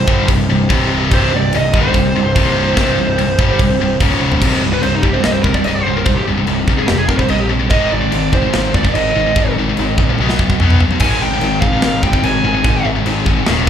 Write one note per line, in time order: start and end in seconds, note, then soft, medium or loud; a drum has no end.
0.00 3.98 C3 medium
0.00 3.98 D#3 medium
0.00 3.99 G3 medium
0.00 3.99 D#4 medium
0.00 3.98 G4 medium
0.00 0.25 C5 medium
0.07 0.27 G1 loud
0.07 0.28 G2 loud
0.07 0.28 D3 loud
0.07 0.28 G3 loud
0.07 kick loud
0.28 0.48 C1 medium
0.28 0.45 C2 medium
0.28 0.46 G2 medium
0.28 kick loud
0.28 crash medium
0.49 0.69 C1 medium
0.49 0.66 C2 medium
0.49 0.66 G2 medium
0.69 1.09 C1 loud
0.69 1.10 C2 loud
0.69 1.11 G2 loud
0.69 1.11 C3 loud
0.69 kick loud
0.69 crash medium
1.11 1.31 C1 loud
1.11 1.31 C2 loud
1.11 1.32 G2 loud
1.11 1.32 C3 loud
1.11 1.32 C5 loud
1.11 kick loud
1.11 crash medium
1.32 1.53 C1 medium
1.32 1.49 C2 medium
1.32 1.49 G2 medium
1.36 1.54 D5 medium
1.52 1.73 C1 medium
1.52 1.69 C2 medium
1.52 1.69 G2 medium
1.52 crash medium
1.57 1.76 D#5 loud
1.73 1.93 G1 loud
1.73 1.93 G2 loud
1.73 1.94 D3 loud
1.73 1.94 G3 loud
1.73 kick loud
1.79 3.99 C5 medium
1.94 2.14 C1 medium
1.94 2.11 C2 medium
1.94 2.11 G2 medium
1.94 kick medium
1.94 crash medium
2.15 2.36 C1 medium
2.15 2.32 C2 medium
2.15 2.32 G2 medium
2.35 2.75 C1 loud
2.35 2.75 C2 loud
2.35 2.75 G2 loud
2.35 2.75 C3 loud
2.35 kick loud
2.35 crash medium
2.76 2.96 C1 medium
2.76 2.95 C2 medium
2.76 2.96 G2 loud
2.76 2.97 C3 loud
2.76 kick loud
2.76 snare loud
2.76 crash medium
2.96 3.18 C1 medium
2.96 3.14 C2 medium
2.96 3.14 G2 medium
3.17 3.38 C1 medium
3.17 3.34 C2 medium
3.17 3.35 G2 medium
3.17 crash medium
3.38 3.58 G1 medium
3.38 3.58 G2 loud
3.38 3.59 D3 loud
3.38 3.59 G3 loud
3.38 kick loud
3.59 3.79 C1 medium
3.59 3.76 C2 medium
3.59 3.76 G2 medium
3.59 kick loud
3.59 crash medium
3.80 4.00 C1 medium
3.80 3.97 C2 medium
3.80 3.97 G2 medium
4.00 4.39 C#1 medium
4.00 4.41 C#2 loud
4.00 4.41 G#2 loud
4.00 4.42 G#2 medium
4.00 4.42 C#3 loud
4.00 4.42 C#3 medium
4.00 4.42 G#3 medium
4.00 4.42 C#4 medium
4.00 4.42 C#5 medium
4.00 kick loud
4.00 crash medium
4.21 high tom medium
4.32 floor tom loud
4.42 4.57 C1 medium
4.42 4.61 C2 medium
4.42 4.61 G2 medium
4.42 4.62 C3 medium
4.42 5.03 G3 loud
4.42 5.02 D#4 loud
4.42 kick loud
4.42 crash loud
4.42 china medium
4.62 4.78 C1 medium
4.62 4.72 C2 medium
4.62 4.72 G2 medium
4.73 4.82 C2 medium
4.73 4.82 G2 medium
4.73 4.82 B4 medium
4.83 4.98 C1 medium
4.83 5.02 C2 medium
4.83 5.02 G2 medium
4.83 4.93 C5 medium
4.83 china medium
4.95 5.04 D#4 medium
5.02 5.18 C1 medium
5.02 5.13 C2 medium
5.02 5.13 G2 medium
5.02 6.06 C3 medium
5.02 6.06 G3 medium
5.02 6.08 D#4 medium
5.02 5.13 G4 medium
5.02 kick medium
5.13 5.24 C2 medium
5.13 5.24 G2 medium
5.13 5.23 C5 medium
5.24 5.39 C1 medium
5.24 5.43 C2 medium
5.24 5.44 G2 medium
5.24 5.32 D#5 loud
5.24 snare loud
5.24 china medium
5.32 5.44 C5 medium
5.42 5.60 C1 loud
5.42 5.54 G2 medium
5.42 5.53 A#4 medium
5.42 kick loud
5.46 5.54 C2 medium
5.54 5.64 C2 medium
5.54 5.64 G2 medium
5.54 5.65 D5 medium
5.54 kick medium
5.64 5.81 C1 medium
5.64 5.84 C2 medium
5.64 5.84 G2 medium
5.64 5.75 D#5 loud
5.64 china medium
5.75 5.83 D5 medium
5.83 5.95 C2 medium
5.83 5.95 G2 medium
5.83 5.95 C5 loud
5.87 6.02 C1 medium
5.96 6.05 C2 medium
5.96 6.06 G2 medium
5.96 6.05 A#4 medium
6.05 6.22 C1 medium
6.05 6.25 C2 medium
6.05 6.25 G2 medium
6.05 6.67 C3 loud
6.05 6.66 G3 loud
6.05 6.67 D#4 loud
6.05 6.16 C5 medium
6.05 kick loud
6.05 china medium
6.15 6.22 G4 medium
6.27 6.43 C1 medium
6.27 6.36 C2 medium
6.27 6.37 G2 medium
6.38 6.46 C2 medium
6.38 6.47 G2 medium
6.47 6.63 C1 medium
6.47 6.66 C2 medium
6.47 6.67 G2 medium
6.47 china medium
6.67 6.83 C1 medium
6.67 6.78 C2 medium
6.67 6.77 G2 medium
6.67 7.70 C3 medium
6.67 7.70 G3 medium
6.67 7.73 D#4 medium
6.67 kick medium
6.77 6.88 C2 medium
6.77 6.88 G2 medium
6.77 6.88 G#4 medium
6.88 7.19 F1 medium
6.88 7.08 C2 medium
6.88 7.08 G2 medium
6.88 6.98 G4 medium
6.88 snare loud
6.88 china medium
6.98 7.09 G#4 medium
7.09 7.19 C2 medium
7.09 7.19 G2 medium
7.09 7.20 A#4 medium
7.09 kick loud
7.17 7.28 C2 medium
7.17 7.28 G2 medium
7.17 7.29 C5 medium
7.17 kick medium
7.28 7.71 A#1 medium
7.28 7.49 C2 medium
7.28 7.48 G2 medium
7.28 7.40 D#5 medium
7.28 china medium
7.40 7.47 G4 medium
7.49 7.61 C2 medium
7.49 7.60 G2 medium
7.62 7.70 C2 medium
7.62 7.71 G2 medium
7.70 7.86 G#1 medium
7.70 7.90 G#2 medium
7.70 7.90 D#3 loud
7.70 7.91 G#3 medium
7.70 8.33 C4 loud
7.70 8.33 D#4 loud
7.70 8.32 G#4 loud
7.70 7.91 D#5 medium
7.70 kick loud
7.70 china medium
7.92 8.08 G#1 medium
7.92 8.01 G#2 medium
7.92 8.01 D#3 medium
7.92 8.31 D5 loud
8.02 8.10 G#2 medium
8.02 8.11 D#3 medium
8.11 8.29 G#1 medium
8.11 8.31 G#2 medium
8.11 8.31 D#3 medium
8.11 china medium
8.32 8.48 G#1 loud
8.32 8.42 G#2 medium
8.32 8.41 D#3 medium
8.32 9.36 G#3 medium
8.32 9.35 C4 medium
8.32 9.36 D#4 medium
8.32 9.35 G#4 medium
8.32 8.72 C5 medium
8.32 kick medium
8.43 8.52 G#2 medium
8.43 8.53 D#3 medium
8.53 8.69 G#1 loud
8.53 8.72 G#2 medium
8.53 8.73 D#3 loud
8.53 snare loud
8.53 china medium
8.74 8.89 G#1 medium
8.74 8.83 G#2 medium
8.74 8.82 D#3 medium
8.74 8.94 D5 medium
8.74 kick loud
8.83 8.93 G#2 medium
8.83 8.93 D#3 medium
8.83 kick medium
8.94 9.11 G#1 medium
8.94 9.13 G#2 medium
8.94 9.13 D#3 medium
8.94 9.53 D#5 medium
8.94 china medium
9.16 9.31 G#1 medium
9.16 9.25 G#2 medium
9.16 9.25 D#3 medium
9.26 9.35 G#2 medium
9.26 9.35 D#3 medium
9.36 9.51 G#1 medium
9.36 9.55 G#2 medium
9.36 9.55 D#3 medium
9.36 9.98 G#3 loud
9.36 9.98 C4 loud
9.36 9.97 D#4 loud
9.36 kick loud
9.36 china medium
9.40 9.96 G#4 loud
9.57 9.72 G#1 medium
9.57 9.67 G#2 medium
9.57 9.67 D#3 medium
9.68 9.78 G#2 medium
9.68 9.78 D#3 medium
9.77 9.93 G#1 medium
9.77 9.97 G#2 medium
9.77 9.97 D#3 medium
9.77 china medium
9.97 10.13 A#1 loud
9.97 10.09 G#2 medium
9.97 10.08 D#3 medium
9.97 10.18 G#3 medium
9.97 10.18 C4 medium
9.97 10.18 D#4 medium
9.97 10.17 G#4 medium
9.97 kick medium
10.09 10.20 G#2 medium
10.09 10.19 D#3 medium
10.19 10.49 B1 medium
10.19 10.39 B2 loud
10.19 10.38 F#3 loud
10.19 10.39 B3 loud
10.19 high tom medium
10.29 snare medium
10.39 10.50 B2 medium
10.39 10.49 F#3 medium
10.39 kick medium
10.50 10.59 B2 medium
10.50 10.60 F#3 loud
10.50 kick medium
10.60 10.90 B1 loud
10.60 10.80 B2 medium
10.60 10.80 F#3 medium
10.60 10.80 B3 loud
10.60 mid tom loud
10.70 mid tom medium
10.80 10.91 B2 medium
10.80 10.90 F#3 medium
10.80 floor tom loud
10.91 11.02 B2 medium
10.91 11.01 F#3 medium
10.91 floor tom medium
11.00 11.16 G#1 medium
11.00 11.21 G#2 medium
11.00 13.46 C3 medium
11.00 13.70 D#3 medium
11.00 11.21 D#3 loud
11.00 13.46 G#3 medium
11.00 11.21 G#3 loud
11.00 11.63 C4 loud
11.00 13.46 D#4 medium
11.00 13.45 G#4 medium
11.00 11.21 G#5 medium
11.00 kick loud
11.00 china medium
11.00 crash medium
11.04 11.62 D#4 loud
11.04 11.62 G#4 loud
11.22 11.37 G#1 medium
11.22 11.32 G#2 medium
11.22 11.31 D#3 medium
11.22 11.61 G5 loud
11.32 11.41 G#2 medium
11.32 11.41 D#3 medium
11.41 11.56 G#1 medium
11.41 11.61 G#2 medium
11.41 11.61 D#3 loud
11.41 china medium
11.61 11.78 G#1 loud
11.61 11.71 G#2 medium
11.61 11.71 D#3 medium
11.61 12.64 G#3 medium
11.61 12.65 C4 medium
11.61 12.65 D#4 medium
11.61 12.65 G#4 medium
11.61 12.00 F5 medium
11.61 kick medium
11.72 11.81 G#2 medium
11.72 11.81 D#3 medium
11.82 11.98 G#1 loud
11.82 12.01 G#2 medium
11.82 12.02 D#3 loud
11.82 snare loud
11.82 china medium
12.03 12.18 G#1 medium
12.03 12.13 G#2 medium
12.03 12.12 D#3 medium
12.03 12.25 G5 loud
12.03 kick medium
12.13 12.22 G#2 medium
12.13 12.23 D#3 loud
12.13 kick medium
12.23 12.39 G#1 medium
12.23 12.43 G#2 medium
12.23 12.43 D#3 medium
12.23 12.87 G#5 loud
12.23 china medium
12.44 12.59 G#1 loud
12.44 12.55 G#2 medium
12.44 12.55 D#3 medium
12.56 12.64 G#2 medium
12.56 12.65 D#3 medium
12.64 12.80 G#1 medium
12.64 12.84 G#2 medium
12.64 12.84 D#3 medium
12.64 13.26 G#3 loud
12.64 13.25 C4 loud
12.64 13.25 D#4 loud
12.64 13.24 G#4 loud
12.64 kick loud
12.64 china medium
12.85 13.01 G#1 medium
12.85 12.94 G#2 medium
12.85 12.94 D#3 medium
12.95 13.04 G#2 medium
12.95 13.05 D#3 medium
13.05 13.21 G#1 medium
13.05 13.25 G#2 medium
13.05 13.25 D#3 medium
13.05 china medium
13.26 13.42 G#1 loud
13.26 13.36 G#2 medium
13.26 13.35 D#3 medium
13.26 13.47 G#3 medium
13.26 13.46 C4 medium
13.26 13.46 D#4 medium
13.26 13.46 G#4 medium
13.26 kick medium
13.36 13.45 G#2 medium
13.36 13.46 D#3 medium
13.46 13.70 D#1 loud
13.46 13.66 D#2 loud
13.46 13.66 A#2 loud
13.46 13.70 A#2 medium
13.46 13.67 D#3 loud
13.46 13.70 A#3 medium
13.46 13.70 D#4 medium
13.46 13.70 D#5 medium
13.46 snare loud
13.46 china medium